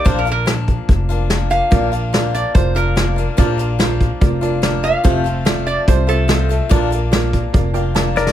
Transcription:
<<
  \new Staff \with { instrumentName = "Pedal steel guitar" } { \time 4/4 \key bes \major \tempo 4 = 144 r1 | r1 | r1 | r1 |
r2. r8 <bes' d''>8 | }
  \new Staff \with { instrumentName = "Resonator guitar played with a steel bar" } { \time 4/4 \key bes \major \tuplet 3/2 { c''8 bes'8 bes'8 } r2 r8 f''8~ | f''4. d''8 c''8 bes'4.~ | bes'4. r2 f''8~ | f''4. d''8 c''8 a'4.~ |
a'4. r2 r8 | }
  \new Staff \with { instrumentName = "Honky-tonk piano" } { \time 4/4 \key bes \major r1 | <f' bes' d''>8 r8 <f' bes' d''>8 r8 <f' bes' c''>8 <f' bes' d''>8 <f' bes' d''>8 r8 | <f' bes' d''>8 r8 <f' bes' f''>8 r8 <f' bes' d''>8 <f' bes' d''>8 <f' bes' d''>8 r8 | <f' a' c''>8 r8 <f' a' d''>8 r8 <f' a' c''>8 <f' a' c''>8 <f' a' ees''>8 r8 |
<f' bes' d''>8 r8 <f' bes' d''>8 d''8 <f' bes' d'' f''>8 <f' bes' d'' g''>8 <f' bes' d'' a''>8 bes''8 | }
  \new Staff \with { instrumentName = "Steel-string acoustic guitar" } { \time 4/4 \key bes \major <bes, f bes d' f'>8 <bes d' f'>8 <f bes d' f'>4. <bes d' f'>8 <f bes d' f'>8 <bes d' f'>8 | <bes, f bes d' f'>8 <bes d' f'>8 <f bes d' f'>4. <bes d' f'>8 <f bes d' f'>8 <bes d' f'>8 | <bes, f bes d' f'>8 <bes d' f'>8 <f bes d' f'>4. <bes d' f'>8 <f bes d' f'>8 <bes d' f'>8 | <f, c f a c' f'>8 <f a c' f'>8 <f a c' f'>4. <f a c' f'>8 <f a c' f'>8 <f a c' f'>8 |
<bes, f bes d' f'>8 <bes d' f'>8 <f bes d' f'>4. <bes d' f'>8 <f bes d' f'>8 <bes d' f'>8 | }
  \new Staff \with { instrumentName = "Upright bass" } { \clef bass \time 4/4 \key bes \major bes,,2 f,,2 | bes,,2 f,,2 | bes,,2 f,,2 | f,,2 c,2 |
bes,,2 f,,2 | }
  \new DrumStaff \with { instrumentName = "Drums" } \drummode { \time 4/4 <hh bd>8 hh8 <hh sn>8 <hh bd>8 <hh bd>8 hh8 <hh sn>8 hh8 | <hh bd>8 hh8 <hh sn>8 hh8 <hh bd>8 hh8 <hh sn>8 hh8 | <hh bd>8 hh8 <hh sn>8 <hh bd>8 <hh bd>8 hh8 <hh sn>8 hh8 | <hh bd>8 hh8 <hh sn>8 hh8 <hh bd>8 hh8 <hh sn>8 hh8 |
<hh bd>8 hh8 <hh sn>8 <hh bd>8 <hh bd>8 hh8 <hh sn>8 sn16 sn16 | }
>>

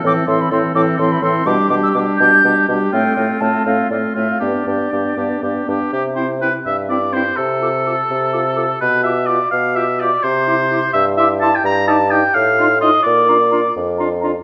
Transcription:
<<
  \new Staff \with { instrumentName = "Flute" } { \time 6/8 \key c \major \tempo 4. = 84 d'''8 c'''16 b''16 c'''8 d'''8 c'''16 b''16 c'''8 | d'''8 d'''16 e'''16 d'''8 g'''4 r8 | g''4 a''8 f''8 d''8 e''16 f''16 | d''2~ d''8 r8 |
r8 g''8 g''8 r8 g''8 g''8 | r8 d'''8 d'''8 r8 d'''8 d'''8 | r8 d'''8 d'''8 r8 d'''8 d'''8 | r8 c'''8 c'''8 r8 c'''8 c'''8 |
\key bes \major r8 ees'''8 ees'''8 r8 c'''8 c'''8 | r8 bes''8 bes''8 r8 bes''8 bes''8 | }
  \new Staff \with { instrumentName = "Oboe" } { \time 6/8 \key c \major a'8 a'8 a'8 a'8 a'8 a'8 | g'8 g'8 g'8 g'8 g'8 g'8 | f'8 f'8 f'8 f'8 f'8 f'8 | g'8 g'8 g'8 g'8 g'8 g'8 |
g'8 c''8 b'8 e''8 d''8 c''8 | a'2. | b'8 e''8 d''8 f''8 e''8 d''8 | c''4. e''8 e''8 a''16 g''16 |
\key bes \major bes''8 a''8 g''8 f''4 ees''8 | d''4. r4. | }
  \new Staff \with { instrumentName = "Clarinet" } { \time 6/8 \key c \major c'8 c'8 c'8 c'8 c'8 c'8 | d'8 d'8 d'8 d'8 d'8 d'8 | c'8 c'8 c'8 c'8 c'8 c'8 | d'8 d'8 d'8 d'8 d'8 d'8 |
r8 e'8 e'8 r8 e'8 e'8 | r8 a'8 a'8 r8 a'8 a'8 | r8 g'8 g'8 r8 g'8 g'8 | r8 g'8 g'8 r8 g'8 g'8 |
\key bes \major r8 g'8 g'8 r8 f'8 f'8 | r8 f'8 f'8 r8 f'8 f'8 | }
  \new Staff \with { instrumentName = "French horn" } { \time 6/8 \key c \major e8 e8 e8 e8 e8 e8 | g8 g8 g8 g8 g8 g8 | a8 a8 a8 a8 a8 a8 | b8 b8 b8 b8 b8 b8 |
r8 c'8 c'8 r8 c'8 c'8 | r8 f'8 f'8 r8 f'8 f'8 | r8 f'8 f'8 r8 f'8 f'8 | r8 e'8 e'8 r8 e'8 e'8 |
\key bes \major r8 ees'8 ees'8 r8 ees'8 ees'8 | r8 d'8 d'8 r8 d'8 d'8 | }
  \new Staff \with { instrumentName = "Bassoon" } { \clef bass \time 6/8 \key c \major a,8 a,8 a,8 a,8 a,8 a,8 | b,8 b,8 b,8 b,8 b,8 b,8 | a,8 a,8 a,8 a,8 a,8 a,8 | g,8 g,8 g,8 g,8 g,8 g,8 |
c4. g,4. | c4. c4. | b,4. b,4. | c4. g,4. |
\key bes \major g,4. a,4. | bes,4. f,4. | }
>>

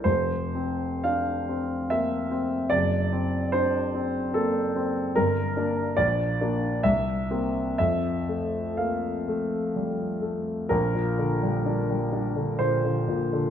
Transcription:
<<
  \new Staff \with { instrumentName = "Grand piano" } { \time 3/4 \key f \major \tempo 4 = 65 c''4 f''4 e''4 | d''4 c''4 a'4 | bes'4 d''4 e''4 | e''4 f''4 r4 |
bes'2 c''4 | }
  \new Staff \with { instrumentName = "Grand piano" } { \time 3/4 \key f \major f,,8 c'8 d'8 c'8 bes8 c'8 | fis,,8 c'8 d'8 c'8 bes8 c'8 | g,,8 <bes d'>8 bes,,8 <bes d'>8 c,8 <bes c'>8 | f,8 a8 bes8 a8 g8 a8 |
bes,,16 bes,16 d16 g16 d'16 g16 d'16 d16 bes,16 d16 bes,16 d16 | }
>>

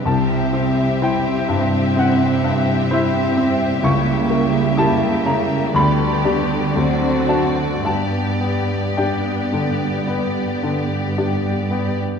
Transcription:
<<
  \new Staff \with { instrumentName = "Violin section" } { \time 4/4 \key g \major \tempo 4 = 61 e''1~ | e''2 d''2~ | d''1 | }
  \new Staff \with { instrumentName = "Violin section" } { \time 4/4 \key g \major g'1~ | g'2 g'4 fis'4 | g'1 | }
  \new Staff \with { instrumentName = "Grand piano" } { \time 4/4 \key g \major << { a''4 g''4 fis''4 e''8 r8 | cis'''4 a''8 ais''8 b''4. a''8 | a''4 g''2 r4 | } \\ { c,8 c'8 <e' c''>8 g,8 c'8 g,8 <e' c''>8 c'8 | cis,8 ais8 <e' g'>8 cis8 d,8 <d' g'>8 d,8 <d' fis'>8 | g,8 b8 <d' g'>8 d8 b8 d8 <d' g'>8 b8 | } >> }
  \new Staff \with { instrumentName = "Viola section" } { \time 4/4 \key g \major c'1 | ais2 b4 c'4 | b1 | }
  \new Staff \with { instrumentName = "French horn section" } { \time 4/4 \key g \major <g e'>4 <g e'>2 <g e'>4 | <g e'>2 <g d'>4 <fis c'>4 | <g b>4 <g b>2~ <g b>8 r8 | }
  \new Staff \with { instrumentName = "Cello section" } { \clef bass \time 4/4 \key g \major c1 | cis2 d2 | g,1 | }
>>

